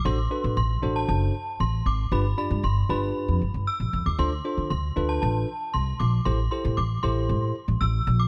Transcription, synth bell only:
\new Staff \with { instrumentName = "Synth bell" } { \time 4/4 \key d \dorian \tempo 4 = 116 c'''4 c'''8. a''16 a''4 c'''8 d'''8 | b''8 b''8 c'''8 b''4 r8 e'''8. d'''16 | c'''4 c'''8. a''16 a''4 c'''8 d'''8 | c'''8 c'''8 d'''8 c'''4 r8 e'''8. d'''16 | }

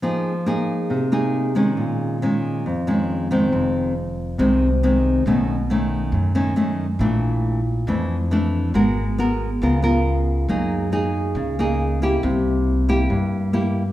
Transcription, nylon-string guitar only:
\new Staff \with { instrumentName = "Nylon-string guitar" } { \time 4/4 \key f \minor \tempo 4 = 138 << { <bes ees' aes'>8 r8 <bes ees' aes'>4. <bes ees' aes'>4 <ees aes des'>8~ | <ees aes des'>4 <ees aes des'>4 r8 <ees aes des'>4 <ees aes c'>8~ | <ees aes c'>4 r4 <ees aes c'>8 r8 <ees aes c'>4 | <dis a cis'>8 r8 <dis a cis'>4. <dis a cis'>8 <dis a cis'>8 r8 |
<e a d'>4. r8 <e a d'>8 r8 <e a d'>4 | <ces' ges' bes'>8 r8 <ces' ges' bes'>8 r8 <b f' bes'>8 <b f' bes'>4. | <bes ees' aes'>4 <bes ees' aes'>4. <bes ees' aes'>4 <bes e' g'>8~ | <bes e' g'>4. <bes e' g'>4. <bes e' g'>8 r8 | } \\ { f2 c2 | bes,2 f,2 | f,2 c2 | b,2 fis,2 |
bes,2 f,2 | aes2 des2 | ges2 des2 | c2 g,2 | } >> }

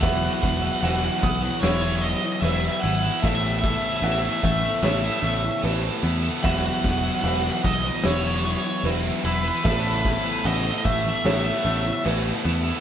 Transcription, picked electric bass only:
\new Staff \with { instrumentName = "Picked electric bass" } { \clef bass \time 4/4 \key a \lydian \tempo 4 = 75 e,,8 e,,8 e,,8 b,,8 e,,4 e,,8 gis,,8 | a,,4 a,,8 a,,8 a,,8 a,,8 a,,8 e,8 | e,,8 e,,8 e,,8 b,,8 e,,4 e,,8 e,,8 | a,,4 a,,8 a,,8 a,,8 a,,8 a,,8 e,8 | }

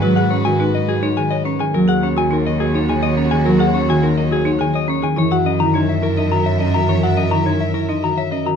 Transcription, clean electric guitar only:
\new Staff \with { instrumentName = "Clean electric guitar" } { \time 3/4 \key dis \phrygian \tempo 4 = 105 b'16 fis''16 cis''16 gis''16 b'16 dis''16 gis'16 cis''16 gis''16 dis''16 cis''16 gis''16 | ais'16 fis''16 cis''16 gis''16 ais'16 dis''16 gis'16 cis''16 gis''16 dis''16 cis''16 gis''16 | ais'16 fis''16 cis''16 gis''16 ais'16 dis''16 gis'16 cis''16 gis''16 dis''16 cis''16 gis''16 | cis''16 fis''16 dis''16 ais''16 cis''16 e''16 ais'16 dis''16 ais''16 e''16 dis''16 ais''16 |
cis''16 fis''16 dis''16 ais''16 cis''16 e''16 ais'16 dis''16 ais''16 e''16 dis''16 ais''16 | }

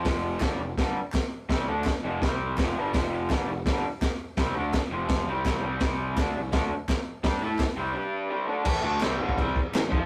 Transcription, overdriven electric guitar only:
\new Staff \with { instrumentName = "Overdriven electric guitar" } { \clef bass \time 4/4 \key f \lydian \tempo 4 = 167 <f, c f>4 <g, d g>8 <f, c>8 <g, d g>8 r4. | <c g c'>8 <d a d'>8 r8 <f, c f>8 <c g c'>4 <f, c f>8 <g, d g>8 | <f, c f>4 <g, d g>8 <f, c>8 <g, d g>8 r4. | <c g c'>8 <d a d'>8 r8 <f, c f>4 <c g c'>4 <c g c'>8 |
<c g c'>4 <d a d'>8 <c g>8 <d a d'>8 r4. | <g d' g'>8 <a e' a'>8 r8 <c g c'>8 <g d' g'>4 <c g c'>8 <d a d'>8 | <a, e a>8 <d a d'>8 <c g c'>8 <g, d g>8 <c g c'>8 r8 <a, e>8 <f c' f'>8 | }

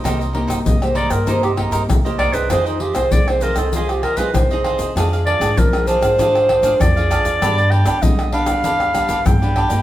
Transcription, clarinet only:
\new Staff \with { instrumentName = "Clarinet" } { \time 4/4 \key c \minor \tempo 4 = 98 r4 ees''16 c''16 d''16 bes'16 c''16 g'16 r4 d''16 b'16 | c''16 ees'16 g'16 c''16 d''16 c''16 bes'16 a'16 aes'16 g'16 bes'16 b'16 c''4 | r8 d''8 bes'8 c''4. d''4~ | d''8 g''8 ees''8 f''4. g''4 | }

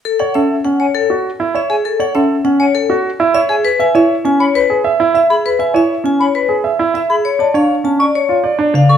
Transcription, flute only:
\new Staff \with { instrumentName = "Flute" } { \time 3/4 \key fis \minor \tempo 4 = 100 r4 r16 gis''16 r4 r16 gis''16 | r4 r16 gis''16 r4 r16 gis''16 | r4 r16 b''16 r4 r16 b''16 | r4 r16 b''16 r4 r16 b''16 |
r4 r16 cis'''16 r4 r16 cis'''16 | }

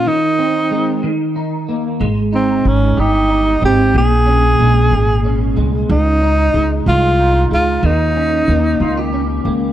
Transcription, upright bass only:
\new Staff \with { instrumentName = "Upright bass" } { \clef bass \time 6/8 \key aes \major \tempo 4. = 62 r2. | aes,,4 aes,,8 g,,4 aes,,8 | bes,,4 bes,,8 aes,,4 c,8 | des,4 des,8 c,4 des,8 |
ees,4 ees,8 des,4 des,8 | }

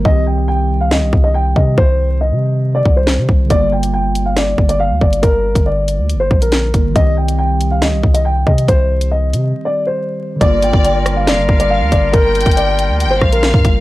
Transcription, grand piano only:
\new Staff \with { instrumentName = "Grand piano" } { \time 4/4 \key g \minor \tempo 4 = 139 ees''8 g''8 g''8. f''16 ees''8. ees''16 g''8 ees''8 | c''4 ees''4~ ees''16 d''8 c''4~ c''16 | d''8 g''8 g''8. f''16 d''8. d''16 f''8 d''8 | bes'4 d''4~ d''16 c''8 bes'4~ bes'16 |
ees''8 g''8 g''8. f''16 ees''8. ees''16 g''8 ees''8 | c''4 ees''4~ ees''16 d''8 c''4~ c''16 | d''8 g''8 g''8. f''16 d''8. d''16 f''8 d''8 | bes'4 d''4~ d''16 c''8 bes'4~ bes'16 | }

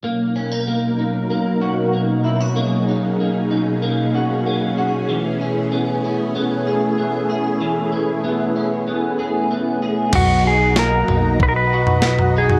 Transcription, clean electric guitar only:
\new Staff \with { instrumentName = "Clean electric guitar" } { \time 4/4 \key b \major \tempo 4 = 95 ais8 cis'16 dis'16 ais8 dis'8 ais8 fis'8 ais8 e'16 fis'16 | ais8 dis'8 ais8 dis'8 ais8 fis'8 ais8 fis'8 | e8 cis'8 b8 cis'8 b8 gis'8 b8 gis'8 | e8 cis'8 b8 cis'8 b8 gis'8 b8 gis'8 |
fis8 dis'8 ais8 dis'4 fis'4 dis'8 | }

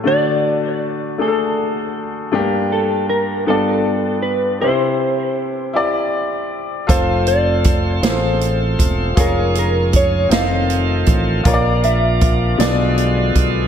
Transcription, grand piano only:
<<
  \new Staff \with { instrumentName = "Grand piano" } { \time 6/8 \key f \major \tempo 4. = 53 <a d' fis'>4 r8 <a d' aes' a'>4 r8 | <a bes d' g'>4 r8 <b d' f' g' d''>4 r8 | <ees' e' g' c''>4 r8 <e' g' d''>4 r8 | <f' a' c''>4 r8 <f' aes' a' c''>4 r8 |
<f' aes' des''>4 r8 <c' ees' f' a' ees''>4 r8 | <f' bes' des'' d''>4 r8 <b d' f' gis' d''>4 r8 | }
  \new Staff \with { instrumentName = "Grand piano" } { \clef bass \time 6/8 \key f \major d4. r4. | g,4. g,4. | c4. r4. | r2. |
r2. | bes,4. b,4. | }
>>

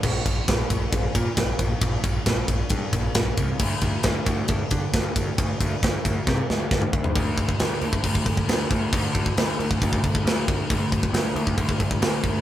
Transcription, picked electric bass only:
\new Staff \with { instrumentName = "Picked electric bass" } { \clef bass \time 4/4 \key bes \lydian \tempo 4 = 135 bes,,8 bes,,8 bes,,8 bes,,8 bes,,8 bes,8 bes,,8 bes,,8 | bes,,8 bes,,8 bes,,8 bes,,8 g,8 bes,,8 bes,,8 c,8 | d,8 d,8 d,8 d,8 d,8 d8 d,8 d,8 | d,8 d,8 d,8 d,8 c8 d,8 d,8 d,8 |
d,4 d,8 d,8 d,8 d,8 d,8 d,8 | d,4 d,8 d,8 d,8 d,8 d,8 d,8 | d,4 d,8 d,8 d,8 d,8 d,8 d,8 | }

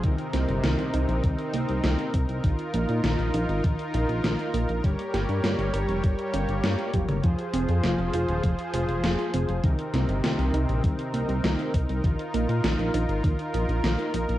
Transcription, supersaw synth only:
\new Staff \with { instrumentName = "Supersaw synth" } { \time 4/4 \key c \phrygian \tempo 4 = 100 << { bes'1~ | bes'1 | des''1 | c''1 |
bes'1~ | bes'1 | } \\ { <c c' ees'>1 | <ees' f'>1 | <g g'>1 | <f f' aes'>1 |
<c c' ees'>1 | f'1 | } >> }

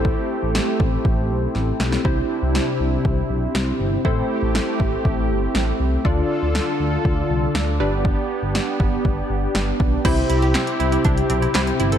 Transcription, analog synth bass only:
\new Staff \with { instrumentName = "Analog synth bass" } { \clef bass \time 4/4 \key c \major \tempo 4 = 120 a,,8 r16 a,,8 r16 a,,8 a,,8 b,,8 a,,8 b,,8 | c,8 r16 c,8 r16 c,8 c,8 b,,8 c,8 g,,8 | a,,8 r16 a,,8 r16 a,,8 a,,8 g,,8 a,,8 c,8 | d,8 r16 d,8 r16 d,8 d,8 c,8 d,8 g,,8~ |
g,,8 r16 g,,8 r16 g,,8 g,,8 g,,8 g,,8 b,,8 | c,8 c,8. r16 c,8 c,8 b,,8 c,8 g,,8 | }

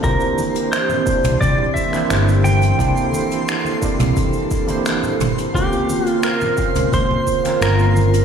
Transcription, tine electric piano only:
\new Staff \with { instrumentName = "Tine electric piano" } { \time 4/4 \key c \mixolydian \tempo 4 = 87 <bes d' e' g' c''>4. <bes d' e' g' d''>4~ <bes d' e' g' d''>16 <bes d' e' g' c''>4~ <bes d' e' g' c''>16 | <bes d' e' g' c''>4. <bes d' e' g' d''>4~ <bes d' e' g' d''>16 <bes d' e' g' c''>4~ <bes d' e' g' c''>16 | <bes c' des' f' bes'>4. <bes c' des' f' c''>4~ <bes c' des' f' c''>16 <bes c' des' f' bes'>4~ <bes c' des' f' bes'>16 | }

